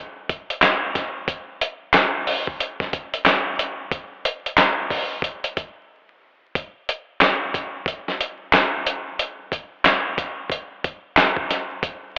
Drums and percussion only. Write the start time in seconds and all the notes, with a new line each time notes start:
0.29 kick, closed hi-hat
0.50 closed hi-hat
0.62 snare, clap, closed hi-hat
0.95 kick, snare, closed hi-hat
1.28 kick, closed hi-hat
1.61 closed hi-hat
1.94 snare, clap, closed hi-hat
2.27 open hi-hat
2.47 kick
2.60 closed hi-hat
2.80 kick, snare
2.93 kick, closed hi-hat
3.14 closed hi-hat
3.26 snare, clap, closed hi-hat
3.59 closed hi-hat
3.91 kick, closed hi-hat
4.25 closed hi-hat
4.46 closed hi-hat
4.57 snare, clap, closed hi-hat
4.90 kick, open hi-hat
5.22 kick, closed hi-hat
5.44 closed hi-hat
5.57 kick, closed hi-hat
6.55 kick, closed hi-hat
6.89 closed hi-hat
7.21 snare, clap, closed hi-hat
7.54 kick, closed hi-hat
7.86 kick, closed hi-hat
8.08 snare
8.21 closed hi-hat
8.53 snare, clap, closed hi-hat
8.87 closed hi-hat
9.19 closed hi-hat
9.52 kick, closed hi-hat
9.85 snare, clap, closed hi-hat
10.18 kick, closed hi-hat
10.50 kick, closed hi-hat
10.84 kick, closed hi-hat
11.17 snare, clap, closed hi-hat
11.36 kick
11.50 snare, closed hi-hat
11.83 kick, closed hi-hat